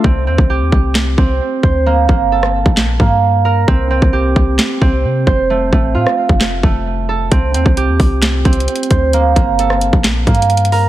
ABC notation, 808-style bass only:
X:1
M:4/4
L:1/16
Q:1/4=132
K:Gm
V:1 name="808-style bass" clef=bass
C,,2 E,, C,,2 E,, C,,4 C,,2 z2 D,,2- | D,,2 G,,,4- G,,, B,,,3 G,,6 | C,,3 C,,3 C,,2 z2 C,,2 C,2 F,,,2- | F,,,2 A,,,2 A,, z2 F,,,3 F,,,6 |
C,,2 E,, C,,2 E,, C,,4 C,,2 z2 D,,2- | D,,2 G,,,4- G,,, B,,,3 G,,6 |]